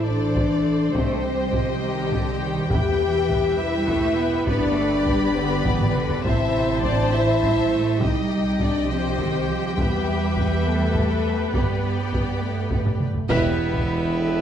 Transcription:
Already playing: double bass section A1, viola section A4 C5, violin section C5, impact
0.05 cello section E3, french horn section D4, violin section D5
0.35 taiko
0.94 double bass section C2, cello section A3, french horn section C4, viola section G4, violin section C5 D#5 G5, taiko
1.24 cello section G3
1.53 cello section F3, taiko
1.83 cello section D#3, french horn section G3, violin section G4
2.12 cello section D3, taiko
2.41 cello section D#3
2.70 double bass section E1, timpani E2, cello section E3, french horn section G4, viola section B4, violin section E5 G5, taiko
3.30 taiko
3.59 cello section G3, french horn section E4, violin section E5
3.88 cello section A3, taiko
4.19 cello section B3
4.47 double bass section G1, cello section B3, french horn section D4, viola section G4, violin section D5 B5, taiko
4.78 cello section A3
5.06 cello section G3, taiko
5.36 cello section D3, french horn section B3, violin section B4
5.65 cello section E3, taiko
5.80 taiko low-mid
5.94 cello section D3, taiko mid
6.09 taiko low
6.24 double bass section A1, cello section C3, french horn section E4, violin section C5 E5 A5, viola section C5, taiko
6.83 french horn section D4, violin section D5, taiko
7.13 cello section E3, french horn section E4, violin section E5
7.43 cello section G3, taiko
7.73 cello section A3
8.00 double bass section C2, cello section G3, french horn section D#4, viola section G4, violin section D#5 G5, taiko
8.59 french horn section D4, violin section D5, taiko
8.89 cello section F3, french horn section C4, violin section C5
9.18 cello section D#3, taiko
9.50 cello section F3
9.77 double bass section E2, cello section G3, french horn section B3, violin section B4 E5, viola section B4, taiko
10.37 taiko
10.66 french horn section A3, violin section A4
10.95 taiko
11.53 double bass section G2, french horn section G3, cello section B3, violin section G4 D5 G5, viola section G4, taiko
12.11 french horn section B3, taiko
12.40 french horn section A3
12.71 taiko
12.86 taiko low-mid
13.00 taiko mid
13.14 taiko low
13.29 double bass section E1, tuba E1, cello section E2, pipe organ B3 G4 B4 E5, french horn section E4, violin section G4 B4 E5, viola section B4, taiko
13.74 taiko
14.19 viola section A4

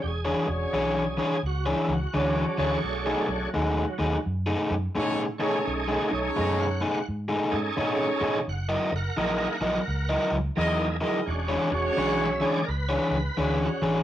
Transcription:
Already playing: horn section C#4 D4 F#4 G#4 C#5
0.02 fingered electric bass E1, tonewheel organ G4
0.07 tonewheel organ G#4
0.25 overdriven electric guitar E3 D4 G#4 C#5
0.47 fingered electric bass E1, horn section C#4 D4 F#4 G#4 C#5, muted overdriven electric guitar stroke
0.73 fingered electric bass B1, overdriven electric guitar E3 D4 G#4 C#5
1.17 overdriven electric guitar E3 D4 G#4 C#5
1.43 fingered electric bass C#2, tonewheel organ F#4
1.66 overdriven electric guitar E3 D4 G#4 C#5
1.70 tonewheel organ E4
1.88 fingered electric bass C#2
1.93 tonewheel organ F#4
2.14 fingered electric bass D2, overdriven electric guitar E3 D4 G#4 C#5, tonewheel organ F#3 D4, horn section C#4 F#4 G#4 C#5
2.58 fingered electric bass D2, overdriven electric guitar E3 D4 G#4 C#5, tonewheel organ A3 D4 G#4 C#5
2.84 fingered electric bass B1
3.06 overdriven electric guitar B2 A3 D#4 G#4
3.28 fingered electric bass B1, muted overdriven electric guitar stroke
3.54 fingered electric bass D#2, overdriven electric guitar B2 A3 D#4 G#4
3.98 fingered electric bass D#2, overdriven electric guitar B2 A3 D#4 G#4
4.26 fingered electric bass F#2
4.46 overdriven electric guitar B2 A3 D#4 G#4
4.71 fingered electric bass F#2
4.95 fingered electric bass A2, overdriven electric guitar B2 A3 D#4 G#4, horn section C#4 D#4 G#4 A4 C#5
5.38 overdriven electric guitar B2 A3 D#4 G#4, tonewheel organ A3 C#4 D#4 G#4, horn section C#4 D#4 G#4 A4 C#5
5.67 fingered electric bass B1
5.88 overdriven electric guitar B2 A3 D#4 G#4
6.10 fingered electric bass B1, horn section C#4 D#4 G#4 A4 C#5, muted overdriven electric guitar stroke
6.36 fingered electric bass F#2, overdriven electric guitar B2 A3 D#4 G#4, tonewheel organ D#5
6.58 tonewheel organ F5
6.63 tonewheel organ F#5
6.81 overdriven electric guitar B2 A3 D#4 G#4
7.09 fingered electric bass G#2
7.29 overdriven electric guitar B2 A3 D#4 G#4
7.51 fingered electric bass G#2, tonewheel organ C#4 D#4 G#4 A4
7.77 fingered electric bass A2, overdriven electric guitar B2 A3 D#4 G#4, horn section C#4 D#4 G#4 C#5
8.21 fingered electric bass A2, overdriven electric guitar B2 A3 D#4 G#4
8.47 fingered electric bass F#1, tonewheel organ F#5
8.69 overdriven electric guitar F#3 E4 A#4 D#5, tonewheel organ D5
8.74 tonewheel organ D#5
8.92 fingered electric bass F#1, muted overdriven electric guitar stroke
8.96 tonewheel organ A#4 F#5
9.16 fingered electric bass A#1, overdriven electric guitar F#3 E4 A#4 D#5, tonewheel organ A#3 D#4 E4 G#4
9.61 fingered electric bass A#1, overdriven electric guitar F#3 E4 A#4 D#5
9.88 fingered electric bass C#2
10.09 overdriven electric guitar F#3 E4 A#4 D#5
10.32 fingered electric bass C#2
10.56 fingered electric bass E2, overdriven electric guitar F#3 E4 A#4 D#5, tonewheel organ A#3 D#4 E4 G#4, horn section D#4 E4 G#4 A#4 D#5
11.00 overdriven electric guitar F#3 E4 A#4 D#5, horn section D#4 E4 G#4 A#4 D#5
11.26 fingered electric bass E1, tonewheel organ G#3 C#4 D4 F#4
11.49 overdriven electric guitar E3 D4 G#4 C#5
11.71 fingered electric bass E1, horn section C#4 F#4 G#4 C#5, muted overdriven electric guitar stroke
11.97 fingered electric bass B1, overdriven electric guitar E3 D4 G#4 C#5, tonewheel organ F#5
12.23 tonewheel organ E5
12.40 overdriven electric guitar E3 D4 G#4 C#5, tonewheel organ G#3 C#4 D4 G#4
12.46 tonewheel organ D5
12.65 fingered electric bass C#2, tonewheel organ A#4
12.69 tonewheel organ B4
12.89 overdriven electric guitar E3 D4 G#4 C#5
13.11 fingered electric bass C#2
13.37 fingered electric bass D2, overdriven electric guitar E3 D4 G#4 C#5, horn section C#4 D4 F#4 G#4 C#5
13.63 tonewheel organ F#4
13.82 fingered electric bass A1, overdriven electric guitar E3 D4 G#4 C#5, tonewheel organ F#4

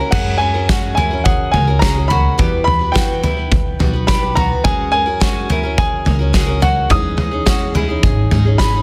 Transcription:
Already playing: string section A#3 F#4, mandolin E4, steel-string acoustic guitar A#4, upright piano A#5
0.00 steel-string acoustic guitar C#4 F#4
0.11 upright bass F#2, steel-string acoustic guitar F#3 G#3 C#4 F#4 A#4, mandolin G#4, upright piano F#5, kick, floor tom, crash
0.38 steel-string acoustic guitar G#3 C#4 F#4, upright piano G#5
0.42 steel-string acoustic guitar A#4
0.54 steel-string acoustic guitar C#4 F#4 A#4
0.69 steel-string acoustic guitar F#3 G#3 C#4 F#4 A#4, mandolin F#4, kick, snare
0.95 steel-string acoustic guitar G#3 C#4 F#4, mandolin E4, upright piano G#5, floor tom
0.99 steel-string acoustic guitar A#4
1.11 steel-string acoustic guitar C#4 F#4 A#4
1.24 upright bass C#2, mandolin G#4, upright piano F#5, kick, floor tom
1.52 upright bass C#2, steel-string acoustic guitar G#3 C#4 F#4 A#4, upright piano G#5, floor tom
1.67 steel-string acoustic guitar C#4 F#4 A#4
1.79 steel-string acoustic guitar F#3 G#3 C#4 F#4 A#4, mandolin G#4, upright piano A#5, kick, snare
1.95 steel-string acoustic guitar C#4 F#4 A#4
2.08 steel-string acoustic guitar G#3 C#4 F#4, mandolin F#4, upright piano B5, floor tom
2.12 steel-string acoustic guitar A#4
2.38 upright bass E2, steel-string acoustic guitar E3 G3 B3 F#4 B4, mandolin G4, kick, floor tom
2.64 steel-string acoustic guitar G3 B3 F#4 B4, upright piano B5, floor tom
2.79 steel-string acoustic guitar B3 F#4 B4
2.92 steel-string acoustic guitar E3 G3 B3 F#4 B4, mandolin F#4, upright piano G5, kick, snare
3.23 steel-string acoustic guitar G3 B3 F#4 B4, mandolin E4, floor tom
3.37 steel-string acoustic guitar B3 B4
3.52 upright bass B1, kick, floor tom
3.79 upright bass B1, steel-string acoustic guitar G3 B3 F#4 B4, floor tom
3.93 steel-string acoustic guitar B3 F#4 B4
4.07 steel-string acoustic guitar E3 G3 B3 F#4 B4, mandolin G4, upright piano B5, kick, snare
4.23 steel-string acoustic guitar B3 F#4 B4
4.35 steel-string acoustic guitar G3 B3 F#4 B4, mandolin F#4, upright piano A#5, floor tom
4.64 upright bass F#2, steel-string acoustic guitar F#3 G#3 C#4 F#4 A#4, mandolin G#4, upright piano G#5, kick, floor tom
4.91 steel-string acoustic guitar G#3 C#4 F#4 A#4, upright piano G#5
5.06 steel-string acoustic guitar C#4 F#4 A#4
5.20 steel-string acoustic guitar F#3 G#3 C#4 F#4 A#4, mandolin F#4, kick, snare
5.49 steel-string acoustic guitar G#3 C#4 F#4 A#4, mandolin E4, floor tom
5.63 steel-string acoustic guitar C#4 F#4 A#4
5.78 upright bass C#2, mandolin G#4, upright piano G#5, kick, floor tom
6.05 upright bass C#2, steel-string acoustic guitar G#3 C#4 F#4 A#4, floor tom
6.19 steel-string acoustic guitar C#4 F#4 A#4
6.33 steel-string acoustic guitar F#3 G#3 C#4 F#4 A#4, mandolin G#4, kick, snare
6.46 steel-string acoustic guitar C#4 F#4 A#4
6.60 steel-string acoustic guitar G#3 C#4 F#4 A#4, mandolin F#4, upright piano F#5, floor tom
6.89 upright bass E2, steel-string acoustic guitar E3 G#3 C#4 D#4 G#4, mandolin G#4, upright piano D#6, kick, floor tom
7.17 steel-string acoustic guitar G#3 C#4 D#4 G#4, floor tom
7.31 steel-string acoustic guitar C#4 D#4 G#4
7.45 steel-string acoustic guitar E3 G#3 C#4 D#4 G#4, mandolin F#4, kick, snare
7.74 steel-string acoustic guitar G#3 C#4 D#4 G#4, mandolin E4, floor tom
7.89 steel-string acoustic guitar C#4 D#4 G#4
8.03 upright bass G#1, mandolin G#4, kick, floor tom
8.31 upright bass G#1, steel-string acoustic guitar G#3 C#4 D#4 G#4, floor tom
8.45 steel-string acoustic guitar C#4 D#4 G#4
8.58 steel-string acoustic guitar E3 G#3 C#4 D#4 G#4, mandolin G#4, upright piano B5, kick, snare
8.74 steel-string acoustic guitar C#4 D#4 G#4

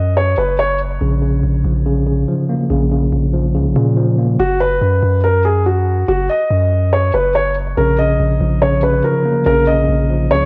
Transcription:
Already playing: 808-style bass F#2, grand piano D#5
0.17 grand piano C#5
0.38 808-style bass F#1, grand piano B4
0.59 grand piano C#5
1.01 808-style bass A#1, tine electric piano C#3
1.22 tine electric piano C#3
1.43 808-style bass A#1
1.65 808-style bass A#1, tine electric piano F3
1.86 tine electric piano C#3
2.07 tine electric piano C#3
2.28 tine electric piano F3
2.49 tine electric piano A#3
2.70 808-style bass A#1, tine electric piano C#3
2.92 tine electric piano C#3
3.12 808-style bass A#1
3.34 tine electric piano F3
3.55 808-style bass C#2, tine electric piano C#3
3.65 808-style bass A#1
3.76 808-style bass A#2, tine electric piano C#3
3.97 tine electric piano F3
4.18 tine electric piano A#3
4.39 808-style bass F#1, grand piano F#4
4.60 grand piano B4
4.82 808-style bass F#2
5.03 808-style bass F#2
5.24 grand piano A#4
5.45 grand piano G#4
5.66 grand piano F#4
6.08 808-style bass F#1, grand piano F#4
6.30 grand piano D#5
6.51 808-style bass F#2
6.93 grand piano C#5
7.14 808-style bass F#1, grand piano B4
7.35 grand piano C#5
7.77 808-style bass A#1, tine electric piano C#3, grand piano A#4
7.98 tine electric piano C#3, grand piano D#5
8.20 808-style bass A#1
8.41 808-style bass A#1, tine electric piano F3
8.62 tine electric piano C#3, grand piano C#5
8.83 tine electric piano C#3, grand piano B4
9.04 tine electric piano F3, grand piano A#4
9.25 tine electric piano A#3
9.46 808-style bass A#1, tine electric piano C#3, grand piano A#4
9.67 tine electric piano C#3, grand piano D#5
9.89 808-style bass A#1
10.10 tine electric piano F3
10.31 808-style bass C#2, tine electric piano C#3, grand piano C#5
10.41 808-style bass A#1

